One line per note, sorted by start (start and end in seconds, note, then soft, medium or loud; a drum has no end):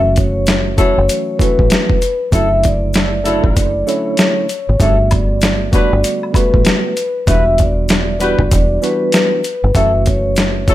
0.00 0.93 F#1 loud
0.00 0.72 E3 medium
0.00 0.72 F#3 medium
0.00 0.73 A3 medium
0.00 0.73 C#4 medium
0.00 0.73 F#4 loud
0.00 0.13 E5 loud
0.16 0.75 C#5 medium
0.16 kick medium
0.16 closed hi-hat medium
0.16 shaker medium
0.46 snare loud
0.46 closed hi-hat medium
0.46 shaker medium
0.77 1.36 E3 medium
0.77 1.36 F#3 medium
0.77 0.98 F#3 medium
0.77 1.36 A3 medium
0.77 1.37 C#4 medium
0.77 0.98 E4 medium
0.77 1.37 F#4 loud
0.77 0.98 A4 loud
0.77 1.36 C#5 medium
0.77 kick medium
0.77 closed hi-hat medium
0.77 shaker medium
0.98 1.07 F#1 medium
1.09 closed hi-hat loud
1.09 shaker medium
1.39 1.97 E3 medium
1.39 1.98 F#3 medium
1.39 1.98 A3 medium
1.39 1.98 C#4 medium
1.39 1.99 F#4 loud
1.39 2.28 B4 medium
1.39 kick medium
1.39 closed hi-hat medium
1.39 shaker medium
1.59 1.69 A1 medium
1.59 kick medium
1.70 snare loud
1.70 closed hi-hat loud
1.70 shaker medium
1.90 kick loud
2.02 closed hi-hat medium
2.02 shaker medium
2.32 3.41 F#1 loud
2.32 3.20 C#3 medium
2.32 3.19 D3 medium
2.32 3.20 F#3 medium
2.32 2.49 F#3 medium
2.32 3.20 A3 medium
2.32 2.49 E4 medium
2.32 3.20 E4 loud
2.32 2.49 A4 loud
2.32 2.60 E5 loud
2.32 kick loud
2.32 closed hi-hat loud
2.32 shaker medium
2.63 3.22 D5 medium
2.63 kick medium
2.63 closed hi-hat medium
2.63 shaker medium
2.93 snare loud
2.93 closed hi-hat medium
2.93 shaker medium
3.24 3.84 C#3 medium
3.24 3.83 D3 loud
3.24 3.83 F#3 medium
3.24 3.68 F#3 loud
3.24 3.83 A3 medium
3.24 3.68 E4 loud
3.24 3.84 E4 loud
3.24 3.68 A4 loud
3.24 3.84 D5 medium
3.24 closed hi-hat medium
3.24 shaker medium
3.44 3.57 A1 medium
3.44 kick medium
3.56 3.82 F#1 loud
3.56 kick medium
3.56 closed hi-hat loud
3.56 shaker medium
3.86 4.45 D3 medium
3.86 4.45 F#3 medium
3.86 4.46 A3 medium
3.86 4.46 C#4 medium
3.86 4.46 E4 loud
3.86 4.76 C#5 medium
3.86 closed hi-hat medium
3.86 shaker medium
4.17 snare loud
4.17 closed hi-hat medium
4.17 shaker medium
4.49 closed hi-hat medium
4.49 shaker medium
4.69 4.78 G#1 medium
4.79 5.88 G1 loud
4.79 5.67 C#3 medium
4.79 4.96 F#3 medium
4.79 5.67 G3 medium
4.79 5.67 A3 medium
4.79 5.68 B3 medium
4.79 4.96 D4 medium
4.79 5.68 F#4 loud
4.79 4.96 A4 medium
4.79 5.08 E5 medium
4.79 kick loud
4.79 closed hi-hat loud
4.79 shaker medium
5.11 5.69 D5 medium
5.11 kick medium
5.11 closed hi-hat medium
5.11 high woodblock medium
5.11 shaker medium
5.41 snare loud
5.41 closed hi-hat medium
5.41 shaker medium
5.71 6.30 D3 medium
5.71 5.93 F#3 loud
5.71 6.30 G3 medium
5.71 6.31 A3 medium
5.71 6.31 B3 medium
5.71 5.93 D4 loud
5.71 6.31 F#4 loud
5.71 5.93 B4 loud
5.71 6.32 D5 medium
5.71 kick loud
5.71 closed hi-hat medium
5.71 shaker medium
5.93 6.02 G1 medium
6.04 closed hi-hat loud
6.04 shaker medium
6.23 high woodblock soft
6.33 6.92 C#3 medium
6.33 6.92 G3 medium
6.33 6.92 A3 medium
6.33 6.93 B3 medium
6.33 6.93 F#4 loud
6.33 7.23 B4 medium
6.33 kick medium
6.33 closed hi-hat medium
6.33 high woodblock medium
6.33 shaker medium
6.54 6.64 A1 medium
6.54 kick medium
6.65 snare loud
6.65 closed hi-hat medium
6.65 shaker medium
6.97 closed hi-hat medium
6.97 shaker medium
7.27 8.36 E1 loud
7.27 8.15 E3 medium
7.27 7.43 G3 medium
7.27 8.15 G3 medium
7.27 8.15 B3 medium
7.27 8.15 D4 medium
7.27 7.43 F#4 medium
7.27 8.16 F#4 loud
7.27 7.43 B4 loud
7.27 7.55 E5 loud
7.27 kick loud
7.27 closed hi-hat loud
7.27 shaker medium
7.58 8.17 D5 medium
7.58 kick medium
7.58 closed hi-hat medium
7.58 shaker medium
7.88 snare loud
7.88 closed hi-hat medium
7.88 shaker medium
8.19 8.78 E3 loud
8.19 8.78 G3 medium
8.19 8.40 G3 loud
8.19 8.79 B3 medium
8.19 8.79 D4 medium
8.19 8.40 F#4 medium
8.19 8.79 F#4 loud
8.19 8.40 B4 loud
8.19 8.79 D5 medium
8.19 closed hi-hat medium
8.19 shaker medium
8.39 8.49 G1 medium
8.39 kick medium
8.51 8.77 E1 loud
8.51 kick loud
8.51 closed hi-hat loud
8.51 shaker medium
8.82 9.40 E3 medium
8.82 9.40 G3 medium
8.82 9.41 B3 medium
8.82 9.41 D4 medium
8.82 9.41 F#4 loud
8.82 9.71 B4 medium
8.82 closed hi-hat medium
8.82 shaker soft
9.12 snare loud
9.12 closed hi-hat medium
9.12 shaker medium
9.44 closed hi-hat medium
9.44 shaker medium
9.64 9.73 G1 medium
9.75 10.75 F#1 loud
9.75 10.62 E3 medium
9.75 10.62 F#3 medium
9.75 9.91 F#3 medium
9.75 10.62 A3 medium
9.75 10.63 C#4 medium
9.75 9.91 E4 medium
9.75 10.63 F#4 loud
9.75 9.91 A4 medium
9.75 10.03 E5 loud
9.75 kick loud
9.75 closed hi-hat loud
9.75 shaker medium
10.06 10.65 C#5 medium
10.06 kick medium
10.06 closed hi-hat medium
10.06 shaker medium
10.36 snare loud
10.36 closed hi-hat medium
10.36 shaker medium
10.67 10.75 E3 medium
10.67 10.75 F#3 medium
10.67 10.75 A3 medium
10.67 10.75 C#4 medium
10.67 10.75 E4 medium
10.67 10.75 F#4 loud
10.67 10.75 A4 loud
10.67 10.75 C#5 medium
10.67 kick loud
10.67 closed hi-hat medium
10.67 shaker medium